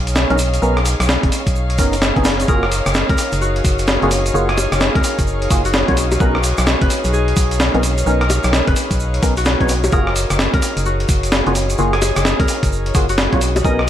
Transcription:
Already playing: B1 D#4 G#4 C#5 F5
0.07 closed hi-hat, shaker
0.15 snare, shaker
0.30 B1 B3 C#4 D#4 A#4, closed hi-hat
0.38 open hi-hat, shaker
0.54 closed hi-hat, shaker
0.62 B1 B3 C#4 D#4 A#4, shaker
0.77 cross-stick, closed hi-hat
0.86 open hi-hat, shaker
1.00 B1, cross-stick, closed hi-hat, shaker
1.09 snare, shaker
1.23 F#1, kick, closed hi-hat
1.32 open hi-hat, shaker
1.47 B1, kick, closed hi-hat, shaker
1.55 shaker
1.70 closed hi-hat
1.78 F#1 B3 C#4 D#4 A#4, kick, open hi-hat, shaker
1.93 open hi-hat, shaker
2.02 snare, shaker
2.16 F#1 B3 C#4 D#4 G#4, kick, closed hi-hat
2.25 snare, open hi-hat, shaker
2.40 closed hi-hat, shaker
2.48 F#1 A#3 F4 F#4 G#4 A#4, kick, shaker
2.63 cross-stick
2.72 open hi-hat, shaker
2.86 F#1, cross-stick, closed hi-hat, shaker
2.94 snare, shaker
3.09 C#2 A#4, kick, closed hi-hat
3.18 open hi-hat, shaker
3.32 F#1, closed hi-hat, shaker
3.41 F#4, shaker
3.56 closed hi-hat
3.65 F#1, kick, open hi-hat, shaker
3.79 closed hi-hat, shaker
3.87 snare, shaker
4.02 F#1 A#3 F4 F#4 G#4, closed hi-hat
4.11 open hi-hat, shaker
4.26 closed hi-hat, shaker
4.34 F#1 A#3 F4 F#4 G#4, shaker
4.49 G#4, cross-stick, closed hi-hat
4.58 open hi-hat, high bongo, shaker
4.72 F#1, cross-stick, closed hi-hat, shaker
4.80 snare, shaker
4.95 C#2 A#4, kick, closed hi-hat
5.04 open hi-hat, shaker
5.19 F#1, kick, closed hi-hat, shaker
5.27 shaker
5.42 closed hi-hat
5.50 F#1 A#3 F4 F#4 G#4, kick, open hi-hat, shaker
5.65 F#4, open hi-hat, shaker
5.74 snare, shaker
5.88 B1 A#3 F4 F#4 C#5, kick, closed hi-hat
5.97 open hi-hat, shaker
6.12 closed hi-hat, high bongo, shaker
6.20 B1 B3 C#4 D#4 A#4 B4, kick, shaker
6.35 cross-stick
6.44 open hi-hat, shaker
6.58 B1, cross-stick, closed hi-hat, shaker
6.67 snare, shaker
6.81 F#1 B4, kick, closed hi-hat
6.90 open hi-hat, shaker
7.04 B1, closed hi-hat, shaker
7.13 G#4, shaker
7.28 closed hi-hat
7.37 B1, kick, open hi-hat, shaker
7.51 closed hi-hat, shaker
7.60 snare, shaker
7.74 B1 B3 C#4 D#4 A#4, closed hi-hat
7.83 open hi-hat, shaker
7.98 closed hi-hat, shaker
8.06 B1 B3 C#4 D#4 A#4, shaker
8.21 A#4, cross-stick, closed hi-hat
8.30 open hi-hat, high bongo, shaker
8.44 B1, cross-stick, closed hi-hat, shaker
8.53 snare, shaker
8.67 F#1 B4, kick, closed hi-hat
8.76 open hi-hat, shaker
8.91 B1, kick, closed hi-hat, shaker
9.00 shaker
9.14 closed hi-hat
9.23 B1 B3 C#4 D#4 A#4, kick, open hi-hat, shaker
9.37 F#4, open hi-hat, shaker
9.45 snare, shaker
9.60 B1 B3 C#4 D#4 C#5, kick, closed hi-hat
9.69 open hi-hat, shaker
9.84 closed hi-hat, high bongo, shaker
9.92 F#1 A#3 F4 F#4 G#4 A#4, kick, shaker
10.07 cross-stick
10.16 open hi-hat, shaker
10.30 F#1, cross-stick, closed hi-hat, shaker
10.39 snare, shaker
10.53 C#2 A#4, kick, closed hi-hat
10.62 open hi-hat, shaker
10.77 F#1, closed hi-hat, shaker
10.85 F#4, shaker
11.00 closed hi-hat
11.09 F#1, kick, open hi-hat, shaker
11.23 closed hi-hat, shaker
11.32 snare, shaker
11.47 F#1 A#3 F4 F#4 G#4, closed hi-hat
11.55 open hi-hat, shaker
11.70 closed hi-hat, shaker
11.78 F#1 A#3 F4 F#4 G#4, shaker
11.93 G#4, cross-stick, closed hi-hat
12.02 open hi-hat, high bongo, shaker
12.16 F#1, cross-stick, closed hi-hat, shaker
12.25 snare, shaker
12.39 C#2 A#4, kick, closed hi-hat
12.48 open hi-hat, shaker
12.63 F#1, kick, closed hi-hat, shaker
12.72 shaker
12.86 closed hi-hat
12.95 F#1 A#3 F4 F#4 G#4, kick, open hi-hat, shaker
13.09 F#4, open hi-hat, shaker
13.18 snare, shaker
13.33 B1 A#3 F4 F#4 C#5, kick, closed hi-hat
13.41 open hi-hat, shaker
13.56 F#5, closed hi-hat, high bongo, shaker
13.64 B1 B3 C#4 D#4 A#4 D#5, kick, shaker
13.79 cross-stick

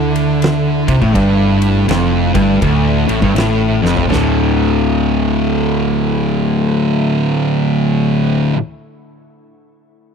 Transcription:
Already playing: D2 D3 A3 E4
0.16 ride
0.42 snare, ride
0.88 C2 C3, kick, ride
1.01 A1 A2, kick
1.15 G1 G2, kick, ride
1.62 ride
1.88 F1 F2, snare, ride
2.35 G1 G2, kick, ride
2.62 D1 D2, kick, ride
3.08 A1 A2, ride
3.22 G1 G2, kick
3.35 A1 A2, snare, ride
3.82 F1 F2, snare
3.97 floor tom
4.08 D1 D2 A2 D3 A3 E4, floor tom
4.12 snare

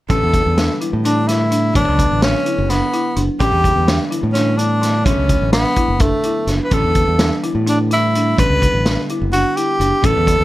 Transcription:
0.09 A1 D3 E3 G3 B3 C#4 A4, kick, closed hi-hat
0.24 E2
0.34 kick, closed hi-hat
0.46 E2
0.58 D4, snare, closed hi-hat
0.81 E4, closed hi-hat
0.93 A2
1.05 D4, closed hi-hat
1.28 E4, snare, closed hi-hat
1.51 D4, closed hi-hat
1.73 A1 D3 F#3 A3 B3 D4 C#5, kick, closed hi-hat
1.88 C#2
1.99 kick, closed hi-hat
2.12 A1
2.22 C#4 D4, snare, closed hi-hat
2.46 E4, closed hi-hat
2.58 F#1
2.70 B3 D4, snare, closed hi-hat
2.93 E4, closed hi-hat
3.16 F#1 D4, closed hi-hat
3.39 A1 D3 E3 G3 B3 C#4 G4, kick, closed hi-hat
3.52 E2
3.64 kick, closed hi-hat
3.76 E2
3.87 D4, snare, closed hi-hat
4.11 E4, closed hi-hat
4.23 A2
4.33 C#4 D4, snare, closed hi-hat
4.58 D4 E4, closed hi-hat
4.82 D4, snare, closed hi-hat
5.05 A1 D3 F#3 A3 B3 C#4, kick, closed hi-hat
5.17 C#2
5.29 kick, closed hi-hat
5.42 A1
5.53 B3 D4, snare, closed hi-hat
5.76 E4, kick, closed hi-hat
5.88 F#1
5.99 A3 D4, kick, closed hi-hat
6.23 E4, closed hi-hat
6.47 F#1 D4, snare, closed hi-hat
6.64 B4
6.70 A1 D3 E3 G3 B3 C#4 A4, kick, closed hi-hat
6.84 E2
6.95 kick, closed hi-hat
7.08 E2
7.19 D4, snare, closed hi-hat
7.43 E4, closed hi-hat
7.55 A2
7.67 D4, closed hi-hat
7.91 E4, closed hi-hat
8.15 D4, closed hi-hat
8.37 A1 D3 G3 A3 B3 C#4 B4, kick, closed hi-hat
8.49 C#2
8.62 kick, closed hi-hat
8.73 A1
8.86 D4, snare, closed hi-hat
9.09 E4, closed hi-hat
9.22 F#1
9.33 D4 F#4, closed hi-hat
9.56 E4 G4, closed hi-hat
9.80 F#1 D4, closed hi-hat
10.02 A1 D3 E3 G3 B3 C#4, kick, closed hi-hat
10.06 A4
10.17 E2
10.27 kick, closed hi-hat
10.40 E2

